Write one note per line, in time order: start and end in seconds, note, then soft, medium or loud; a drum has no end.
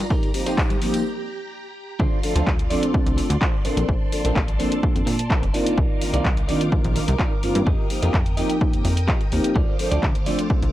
0.00 1.96 A#5 medium
0.10 0.18 F2 medium
0.10 0.29 D#4 loud
0.10 1.98 G4 medium
0.10 0.29 G4 medium
0.10 0.29 A#4 loud
0.10 kick loud
0.23 closed hi-hat soft
0.23 tambourine soft
0.34 0.44 F3 medium
0.34 0.45 A#3 medium
0.34 0.45 C4 medium
0.34 0.45 D#4 medium
0.34 0.45 G4 loud
0.34 open hi-hat loud
0.46 0.54 F2 medium
0.46 0.60 F3 medium
0.46 0.60 A#3 medium
0.46 0.60 C4 medium
0.46 0.60 D#4 medium
0.46 0.76 D#4 medium
0.46 0.76 G4 medium
0.46 0.60 G4 medium
0.46 0.76 C5 loud
0.46 closed hi-hat medium
0.46 tambourine medium
0.58 0.87 F2 medium
0.58 kick loud
0.58 clap loud
0.58 tambourine medium
0.70 closed hi-hat soft
0.70 tambourine soft
0.70 high conga medium
0.81 1.02 F3 medium
0.81 1.02 A#3 medium
0.81 1.03 C4 medium
0.81 1.03 D#4 medium
0.81 1.03 G4 loud
0.81 open hi-hat loud
0.94 closed hi-hat medium
0.94 tambourine medium
1.99 2.08 D2 medium
1.99 2.18 D4 loud
1.99 3.63 F4 medium
1.99 2.18 F4 loud
1.99 2.18 A4 medium
1.99 2.18 C5 loud
1.99 5.50 D5 medium
1.99 5.50 C6 medium
1.99 kick loud
2.23 2.34 F3 medium
2.23 2.34 A3 medium
2.23 2.34 C4 medium
2.23 2.34 D4 medium
2.23 2.34 A4 loud
2.23 open hi-hat loud
2.35 2.43 D2 medium
2.35 2.49 F3 medium
2.35 2.49 A3 medium
2.35 2.49 C4 medium
2.35 2.49 D4 medium
2.35 2.47 D4 medium
2.35 2.47 F4 medium
2.35 2.47 A4 medium
2.35 2.49 A4 medium
2.35 2.47 C5 medium
2.35 closed hi-hat medium
2.47 2.76 D2 medium
2.47 kick loud
2.47 clap loud
2.59 muted clean electric guitar stroke soft
2.59 closed hi-hat medium
2.70 2.91 F3 medium
2.70 2.92 A3 medium
2.70 2.92 C4 medium
2.70 2.92 D4 medium
2.70 2.83 D4 medium
2.70 2.83 F4 medium
2.70 2.83 A4 medium
2.70 2.92 A4 loud
2.70 2.83 D5 loud
2.70 open hi-hat medium
2.83 closed hi-hat medium
2.94 3.04 C2 soft
2.94 3.05 F3 loud
2.94 3.05 A3 medium
2.94 3.05 C4 medium
2.94 3.05 D4 medium
2.94 3.05 A4 loud
2.94 muted clean electric guitar stroke soft
2.94 kick loud
3.06 3.21 C2 loud
3.06 3.27 F3 medium
3.06 3.27 A3 medium
3.06 3.27 C4 medium
3.06 3.27 D4 medium
3.06 3.27 A4 medium
3.06 closed hi-hat medium
3.17 muted clean electric guitar stroke loud
3.17 open hi-hat loud
3.29 3.37 D2 loud
3.29 muted clean electric guitar stroke soft
3.29 closed hi-hat medium
3.41 3.54 D4 medium
3.41 3.54 F4 medium
3.41 3.54 A4 medium
3.41 3.54 C5 loud
3.41 kick loud
3.41 clap loud
3.64 3.75 A#1 soft
3.64 3.87 F3 loud
3.64 3.87 A#3 medium
3.64 3.87 C4 medium
3.64 3.87 D4 medium
3.64 4.12 D4 medium
3.64 3.87 A4 loud
3.64 4.12 A4 medium
3.64 4.12 A#4 medium
3.64 4.12 C5 loud
3.64 5.53 A5 medium
3.64 open hi-hat medium
3.77 3.84 A#1 loud
3.77 closed hi-hat medium
3.89 3.97 A#1 loud
3.89 kick loud
4.12 4.22 F3 medium
4.12 4.22 A#3 medium
4.12 4.23 C4 medium
4.12 4.23 D4 medium
4.12 4.23 A4 medium
4.12 open hi-hat loud
4.24 4.32 A#1 medium
4.24 4.38 F3 medium
4.24 4.38 A#3 medium
4.24 4.38 C4 medium
4.24 4.38 D4 medium
4.24 4.36 D4 medium
4.24 4.38 A4 loud
4.24 4.36 A4 medium
4.24 4.36 A#4 medium
4.24 4.36 C5 medium
4.24 closed hi-hat medium
4.36 kick loud
4.36 clap loud
4.48 muted clean electric guitar stroke soft
4.48 closed hi-hat medium
4.59 4.80 F3 loud
4.59 4.80 A#3 medium
4.59 4.80 C4 medium
4.59 4.81 D4 medium
4.59 4.72 D4 medium
4.59 4.81 A4 loud
4.59 4.72 A4 medium
4.59 4.72 A#4 medium
4.59 4.72 C5 loud
4.59 open hi-hat loud
4.72 closed hi-hat medium
4.83 4.93 F3 loud
4.83 4.93 A#3 medium
4.83 4.94 C4 medium
4.83 4.94 D4 medium
4.83 4.94 A4 loud
4.83 kick loud
4.95 5.03 F2 medium
4.95 5.16 F3 medium
4.95 5.16 A#3 medium
4.95 5.16 C4 medium
4.95 5.16 D4 medium
4.95 5.16 A4 medium
4.95 closed hi-hat medium
5.06 5.36 A#2 medium
5.06 muted clean electric guitar stroke loud
5.06 open hi-hat loud
5.19 muted clean electric guitar stroke soft
5.19 closed hi-hat medium
5.30 5.43 D4 medium
5.30 5.43 A4 medium
5.30 5.43 A#4 medium
5.30 5.43 C5 medium
5.30 kick loud
5.30 clap loud
5.42 5.50 F1 loud
5.42 closed hi-hat soft
5.53 5.76 D#3 loud
5.53 5.76 A#3 medium
5.53 5.76 C4 medium
5.53 5.76 D4 medium
5.53 7.65 D#4 medium
5.53 6.01 D#4 medium
5.53 5.76 F4 loud
5.53 6.01 F4 medium
5.53 9.52 A#4 medium
5.53 6.01 A#4 medium
5.53 6.01 D5 loud
5.53 7.65 F5 medium
5.53 7.65 D6 medium
5.53 open hi-hat loud
5.66 closed hi-hat medium
5.78 5.86 C2 loud
5.78 kick loud
6.01 6.12 D#3 medium
6.01 6.12 A#3 medium
6.01 6.12 C4 medium
6.01 6.12 D4 medium
6.01 6.12 F4 loud
6.01 open hi-hat loud
6.13 6.21 C2 medium
6.13 6.27 D#3 medium
6.13 6.27 A#3 medium
6.13 6.27 C4 medium
6.13 6.27 D4 medium
6.13 6.25 D#4 medium
6.13 6.27 F4 loud
6.13 6.25 F4 medium
6.13 6.25 A#4 medium
6.13 6.25 D5 loud
6.13 closed hi-hat medium
6.25 6.54 C2 medium
6.25 kick loud
6.25 clap loud
6.37 muted clean electric guitar stroke soft
6.37 closed hi-hat soft
6.48 6.69 D#3 loud
6.48 6.69 A#3 medium
6.48 6.70 C4 medium
6.48 6.70 D4 medium
6.48 6.61 D#4 medium
6.48 6.61 F4 medium
6.48 6.70 F4 loud
6.48 6.61 A#4 medium
6.48 6.61 D5 medium
6.48 open hi-hat loud
6.61 closed hi-hat medium
6.72 6.82 A#1 soft
6.72 6.82 D#3 loud
6.72 6.83 A#3 medium
6.72 6.83 C4 medium
6.72 6.83 D4 medium
6.72 6.83 F4 loud
6.72 muted clean electric guitar stroke soft
6.72 kick loud
6.84 7.00 A#1 loud
6.84 7.05 D#3 medium
6.84 7.05 A#3 medium
6.84 7.05 C4 medium
6.84 7.05 D4 medium
6.84 7.05 F4 loud
6.84 closed hi-hat medium
6.95 muted clean electric guitar stroke loud
6.95 open hi-hat loud
7.07 7.16 C2 loud
7.07 muted clean electric guitar stroke soft
7.07 closed hi-hat medium
7.19 7.31 D#4 medium
7.19 7.32 F4 medium
7.19 7.32 A#4 medium
7.19 7.32 D5 loud
7.19 kick loud
7.19 clap loud
7.42 7.53 G2 soft
7.42 7.65 D#3 loud
7.42 7.65 A#3 medium
7.42 7.65 C4 medium
7.42 7.65 D4 medium
7.42 7.65 F4 loud
7.42 muted clean electric guitar stroke soft
7.42 open hi-hat medium
7.55 7.63 G2 loud
7.55 closed hi-hat medium
7.66 7.75 F2 loud
7.66 7.84 F4 loud
7.66 7.84 G4 loud
7.66 7.85 A#4 medium
7.66 7.85 D#5 loud
7.66 9.54 G5 medium
7.66 9.54 D#6 medium
7.66 kick loud
7.90 8.00 F3 medium
7.90 8.01 A#3 medium
7.90 8.01 C4 medium
7.90 8.01 D#4 medium
7.90 8.01 G4 loud
7.90 open hi-hat loud
8.02 8.10 F2 medium
8.02 8.15 F3 medium
8.02 8.16 A#3 medium
8.02 8.16 C4 medium
8.02 8.16 D#4 medium
8.02 8.14 F4 medium
8.02 8.14 G4 medium
8.02 8.16 G4 medium
8.02 8.14 A#4 medium
8.02 8.14 D#5 loud
8.02 closed hi-hat medium
8.14 8.43 F2 medium
8.14 kick loud
8.14 clap loud
8.26 muted clean electric guitar stroke soft
8.26 closed hi-hat soft
8.37 8.58 F3 loud
8.37 8.58 A#3 medium
8.37 8.58 C4 medium
8.37 8.59 D#4 medium
8.37 8.50 F4 medium
8.37 8.50 G4 medium
8.37 8.59 G4 loud
8.37 8.50 A#4 medium
8.37 8.50 D#5 loud
8.37 open hi-hat loud
8.50 closed hi-hat medium
8.61 8.71 F3 loud
8.61 8.71 A#3 medium
8.61 kick loud
8.73 8.83 F2 soft
8.73 8.94 F3 medium
8.73 8.94 A#3 medium
8.73 8.94 C4 medium
8.73 8.94 D#4 medium
8.73 8.94 G4 loud
8.73 closed hi-hat medium
8.84 9.14 F2 medium
8.84 muted clean electric guitar stroke loud
8.84 open hi-hat loud
8.96 muted clean electric guitar stroke soft
8.96 closed hi-hat medium
9.07 9.20 F4 medium
9.07 9.20 G4 medium
9.07 9.21 A#4 medium
9.07 9.21 D#5 medium
9.07 kick loud
9.07 clap loud
9.21 closed hi-hat soft
9.31 9.40 D#2 medium
9.31 9.54 F3 loud
9.31 9.54 A#3 medium
9.31 9.54 C4 medium
9.31 9.54 D#4 medium
9.31 9.54 G4 loud
9.31 muted clean electric guitar stroke soft
9.31 open hi-hat medium
9.44 closed hi-hat medium
9.55 9.64 D2 loud
9.55 9.73 F4 loud
9.55 9.73 A4 loud
9.55 10.72 C5 medium
9.55 9.73 C5 loud
9.55 9.74 D5 loud
9.55 10.72 F5 medium
9.55 10.72 D6 medium
9.55 kick loud
9.79 9.90 F3 medium
9.79 9.90 A3 medium
9.79 9.90 C4 medium
9.79 9.90 D4 medium
9.79 9.90 A4 loud
9.79 open hi-hat loud
9.91 9.99 D2 medium
9.91 10.05 F3 medium
9.91 10.05 A3 medium
9.91 10.05 C4 medium
9.91 10.05 D4 medium
9.91 10.03 F4 medium
9.91 10.05 A4 loud
9.91 10.03 A4 medium
9.91 10.03 C5 medium
9.91 10.03 D5 loud
9.91 closed hi-hat medium
10.03 10.32 D2 medium
10.03 kick loud
10.03 clap loud
10.15 muted clean electric guitar stroke soft
10.15 closed hi-hat soft
10.26 10.47 F3 loud
10.26 10.47 A3 medium
10.26 10.47 C4 medium
10.26 10.47 D4 medium
10.26 10.39 F4 medium
10.26 10.48 A4 loud
10.26 10.39 A4 medium
10.26 10.39 C5 medium
10.26 10.39 D5 medium
10.26 open hi-hat medium
10.39 closed hi-hat medium
10.50 10.60 C2 soft
10.50 10.61 A4 loud
10.50 kick loud
10.62 10.72 C2 loud
10.62 10.72 F3 medium
10.62 10.72 A3 medium
10.62 10.72 C4 medium
10.62 10.72 D4 medium
10.62 10.72 A4 medium
10.62 closed hi-hat medium